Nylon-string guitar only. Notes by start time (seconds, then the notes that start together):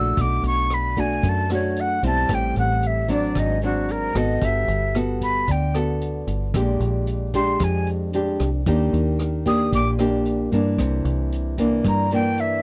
Already playing: C#3 A3 D4 F#4
0.18 B2
0.97 A3 D4 F#4
1.24 F#2
1.51 A3 D4 F#4
2.03 G3 C4 E4
2.30 A2
3.08 F#3 C4 D4
3.36 G#2
3.63 F#3 C4 D4
4.15 B3 F#4 A4
4.43 G3
4.95 B3 F#4 A4
5.47 D3
5.75 B3 F#4 A4
6.54 A#2 G#3 D4 G4
7.34 G#3 D4 G4
7.61 F2
8.14 G#3 D4 G4
8.67 D#3 A#3 D4 G4
9.46 A#3 D4 G4
9.73 A#2
9.99 A#3 D4 G4
10.53 E3 A#3 D4
10.79 C3
11.58 E3 A#3 D4
11.85 G2
12.12 E3 A#3 D4